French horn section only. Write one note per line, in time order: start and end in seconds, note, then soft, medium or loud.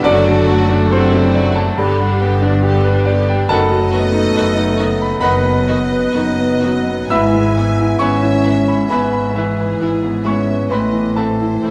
0.03 0.88 D3 medium
0.90 1.78 C3 medium
3.49 5.17 A3 loud
5.21 7.10 B3 medium
7.11 7.98 E4 medium
7.99 8.90 C#4 medium
8.89 9.35 B3 medium
9.34 10.24 E3 medium
10.25 10.70 C#4 medium
10.72 11.16 B3 soft
11.14 11.71 A3 medium